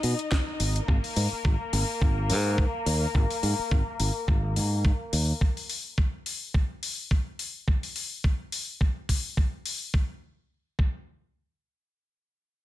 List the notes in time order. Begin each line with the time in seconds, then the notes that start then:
Already playing: D#4 D#5
0.03 B2, open hi-hat
0.19 closed hi-hat
0.32 kick, snare, closed hi-hat
0.60 G#1, open hi-hat
0.76 closed hi-hat
0.88 G#1 A#3 A#4, kick
1.04 open hi-hat
1.16 G#2, open hi-hat
1.32 muted fingered electric bass stroke
1.45 G#1, kick
1.73 G#1, open hi-hat
2.01 G#1, kick
2.30 G#2, open hi-hat
2.58 kick
2.86 D#2, open hi-hat
3.15 G#1, kick
3.30 open hi-hat
3.43 G#2, open hi-hat
3.59 muted fingered electric bass stroke
3.71 G#1, kick
4.00 G#1, open hi-hat
4.28 G#1, kick
4.56 G#2, open hi-hat
4.85 kick
5.13 D#2, open hi-hat
5.41 kick
5.57 open hi-hat
5.70 open hi-hat
5.98 kick
6.26 open hi-hat
6.54 kick
6.83 open hi-hat
7.11 kick
7.39 open hi-hat
7.68 kick
7.83 open hi-hat
7.96 open hi-hat
8.24 kick
8.52 open hi-hat
8.81 kick
9.09 kick, open hi-hat
9.37 kick
9.66 open hi-hat
9.94 kick
10.79 kick